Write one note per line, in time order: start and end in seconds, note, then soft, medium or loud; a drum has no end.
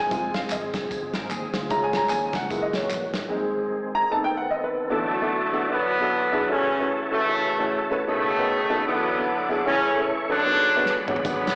0.00 0.11 D#3 medium
0.00 4.07 G#3 medium
0.00 1.68 C4 medium
0.00 2.47 G#4 medium
0.00 0.36 G#5 loud
0.10 0.45 F1 loud
0.10 1.69 F3 medium
0.10 1.67 G#3 medium
0.10 1.67 C4 medium
0.10 1.67 F4 medium
0.10 kick loud
0.10 closed hi-hat medium
0.10 tambourine medium
0.34 0.39 F5 medium
0.34 snare loud
0.34 closed hi-hat medium
0.34 tambourine medium
0.50 0.70 G#1 medium
0.50 0.73 D#5 medium
0.50 clap loud
0.50 closed hi-hat loud
0.50 tambourine loud
0.73 0.89 F1 medium
0.73 kick loud
0.73 snare loud
0.73 closed hi-hat medium
0.73 tambourine medium
0.91 1.11 G1 medium
0.91 kick loud
0.91 closed hi-hat medium
0.91 tambourine medium
1.14 1.29 G#1 medium
1.14 1.30 A#4 medium
1.14 snare loud
1.14 closed hi-hat medium
1.14 tambourine medium
1.30 1.50 D#2 medium
1.30 1.53 C4 medium
1.30 1.53 G#4 medium
1.30 clap medium
1.30 closed hi-hat medium
1.30 tambourine loud
1.53 1.68 D2 medium
1.53 1.92 G#3 medium
1.53 1.92 F4 medium
1.53 snare loud
1.53 closed hi-hat medium
1.53 tambourine medium
1.70 2.05 C#2 loud
1.70 2.50 F3 medium
1.70 2.30 G#3 medium
1.70 2.50 C#4 medium
1.70 2.31 C#4 medium
1.70 2.31 F4 medium
1.70 1.85 A#5 loud
1.70 kick loud
1.70 closed hi-hat medium
1.70 tambourine medium
1.84 1.98 G#5 medium
1.93 2.11 A#5 loud
1.93 snare loud
1.93 closed hi-hat medium
1.93 tambourine medium
2.10 2.30 D#2 loud
2.10 2.38 G#5 medium
2.10 clap medium
2.10 closed hi-hat loud
2.10 tambourine loud
2.33 2.48 C#2 medium
2.33 2.64 F#5 medium
2.33 kick loud
2.33 snare loud
2.33 closed hi-hat medium
2.33 tambourine medium
2.50 2.85 F#1 loud
2.50 3.30 E3 medium
2.50 2.79 G#3 medium
2.50 3.29 A#3 medium
2.50 2.79 A#3 soft
2.50 2.79 E4 medium
2.50 3.30 F#4 medium
2.50 kick loud
2.50 closed hi-hat medium
2.50 tambourine medium
2.62 2.77 D#5 medium
2.73 3.33 C#5 medium
2.73 snare medium
2.73 closed hi-hat medium
2.73 tambourine medium
2.90 3.25 A#1 medium
2.90 clap loud
2.90 closed hi-hat medium
2.90 tambourine loud
3.14 snare loud
3.14 closed hi-hat medium
3.14 tambourine medium
3.30 4.88 D#3 medium
3.30 3.90 G#3 medium
3.30 4.88 C4 medium
3.30 3.90 C4 medium
3.30 3.91 D#4 medium
3.30 4.09 G#4 medium
3.95 4.12 A#5 loud
4.10 4.39 A3 medium
4.10 4.89 B3 medium
4.10 4.39 C4 medium
4.10 4.39 D#4 medium
4.10 4.89 A4 medium
4.10 4.17 A5 loud
4.24 4.38 G5 loud
4.37 4.50 F#5 medium
4.51 4.63 D#5 medium
4.64 4.88 B4 medium
4.90 5.67 D3 medium
4.90 5.49 E3 medium
4.90 5.67 F#3 medium
4.90 5.67 A3 medium
4.90 5.09 B3 medium
4.90 5.10 D4 medium
4.90 5.10 E4 medium
4.90 8.05 F#4 medium
4.90 5.10 F#4 medium
4.90 5.10 A4 medium
4.90 6.48 D5 medium
4.90 8.05 E5 medium
4.90 8.05 A5 medium
5.21 5.38 B3 medium
5.21 5.38 D4 medium
5.21 5.38 E4 medium
5.21 5.38 F#4 medium
5.21 5.38 A4 medium
5.52 5.62 B3 medium
5.52 5.62 D4 medium
5.52 5.62 E4 medium
5.52 5.63 F#4 medium
5.52 5.63 A4 loud
5.69 6.46 D3 medium
5.69 6.46 F#3 medium
5.69 5.89 B3 medium
5.69 6.46 B3 loud
5.69 5.89 D4 medium
5.69 5.89 E4 medium
5.69 5.89 F#4 medium
5.69 5.89 B4 medium
6.00 6.17 B3 medium
6.00 6.17 D4 medium
6.00 6.17 E4 medium
6.00 6.18 F#4 medium
6.00 6.18 A4 medium
6.31 6.41 B3 medium
6.31 6.42 D4 medium
6.31 6.42 E4 medium
6.31 6.42 F#4 medium
6.31 6.42 G#4 loud
6.49 6.90 C#3 loud
6.49 7.11 E3 medium
6.49 6.68 A3 medium
6.49 7.11 A3 medium
6.49 6.68 C#4 medium
6.49 6.90 C#4 loud
6.49 6.68 E4 medium
6.49 6.69 F#4 medium
6.49 6.69 A4 medium
6.49 8.86 C#5 medium
6.80 6.97 A3 medium
6.80 6.97 C#4 medium
6.80 6.97 E4 medium
6.80 6.97 F#4 medium
6.80 6.97 B4 medium
7.11 7.88 C#3 medium
7.11 7.87 E3 medium
7.11 7.21 A3 medium
7.11 7.87 A3 loud
7.11 7.21 C#4 medium
7.11 7.21 E4 medium
7.11 7.22 F#4 medium
7.11 7.22 A4 medium
7.28 7.48 A3 medium
7.28 7.48 C#4 medium
7.28 7.48 E4 medium
7.28 7.48 F#4 medium
7.28 7.48 B4 medium
7.59 7.76 A3 loud
7.59 7.76 C#4 medium
7.59 7.76 E4 medium
7.59 7.76 F#4 medium
7.59 7.76 A4 loud
7.91 8.00 A3 medium
7.91 8.01 C#4 medium
7.91 8.01 E4 medium
7.91 8.01 F#4 medium
7.91 8.01 B4 loud
8.07 8.66 B2 medium
8.07 8.84 C#3 medium
8.07 8.84 D#3 medium
8.07 8.84 A3 loud
8.07 8.27 B3 medium
8.07 8.27 C#4 medium
8.07 8.27 D#4 medium
8.07 8.27 F#4 medium
8.07 8.27 A4 medium
8.07 10.44 A4 medium
8.07 8.87 D#5 medium
8.07 8.87 B5 medium
8.38 8.55 B3 medium
8.38 8.55 C#4 medium
8.38 8.56 D#4 medium
8.38 8.56 F#4 medium
8.38 8.56 B4 medium
8.69 8.79 B3 loud
8.69 8.80 C#4 medium
8.69 8.80 D#4 medium
8.69 8.80 F#4 medium
8.69 8.80 A4 loud
8.86 9.63 D3 medium
8.86 9.45 E3 medium
8.86 9.63 F#3 medium
8.86 9.06 B3 medium
8.86 9.42 B3 loud
8.86 9.06 D4 medium
8.86 9.06 E4 medium
8.86 9.06 F#4 medium
8.86 9.07 A4 medium
8.86 9.64 E5 medium
8.86 9.66 F#5 medium
8.86 9.66 D6 medium
9.17 9.34 B3 medium
9.17 9.35 D4 medium
9.17 9.34 E4 medium
9.17 9.35 F#4 medium
9.17 9.35 A4 medium
9.49 9.59 B3 medium
9.49 9.59 D4 medium
9.49 9.59 E4 medium
9.49 9.59 F#4 medium
9.49 9.60 G#4 loud
9.66 10.04 C#3 loud
9.66 10.25 E3 medium
9.66 10.42 E3 medium
9.66 9.85 A3 medium
9.66 10.42 A3 medium
9.66 9.86 C#4 medium
9.66 10.04 C#4 loud
9.66 10.45 E4 medium
9.66 9.86 E4 medium
9.66 9.86 A4 medium
9.66 10.45 C#5 medium
9.66 9.86 C#5 medium
9.66 10.45 E5 medium
9.66 10.45 C#6 medium
9.97 10.14 A3 medium
9.97 10.14 C#4 medium
9.97 10.14 E4 medium
9.97 10.14 A4 medium
9.97 10.14 C#5 medium
10.28 11.04 D3 loud
10.28 11.05 F#3 medium
10.28 10.38 A3 medium
10.28 11.05 B3 medium
10.28 10.38 C#4 medium
10.28 11.04 D4 loud
10.28 10.39 E4 medium
10.28 10.39 A4 medium
10.28 10.39 B4 medium
10.45 11.04 G#2 medium
10.45 10.65 B3 medium
10.45 10.65 D4 medium
10.45 10.65 F#4 medium
10.45 10.65 G#4 medium
10.45 11.55 G#4 medium
10.45 10.65 B4 medium
10.45 11.55 D5 medium
10.45 11.55 F#5 medium
10.45 11.55 B5 medium
10.76 10.93 B3 medium
10.76 10.93 D4 medium
10.76 10.93 F#4 medium
10.76 10.93 G#4 medium
10.76 10.93 B4 loud
10.86 snare medium
11.07 11.17 B3 medium
11.07 11.17 D4 medium
11.07 11.18 F#4 medium
11.07 11.18 G#4 medium
11.07 11.18 C#5 loud
11.07 mid tom loud
11.16 floor tom loud
11.24 11.44 G#1 loud
11.24 11.55 D3 medium
11.24 11.55 F#3 medium
11.24 11.44 B3 medium
11.24 11.55 B3 loud
11.24 11.44 D4 medium
11.24 11.44 F#4 medium
11.24 11.44 G#4 medium
11.24 11.44 B4 medium
11.24 kick loud
11.24 closed hi-hat loud
11.24 tambourine medium
11.47 11.55 B1 loud
11.47 snare loud
11.47 closed hi-hat medium
11.47 tambourine medium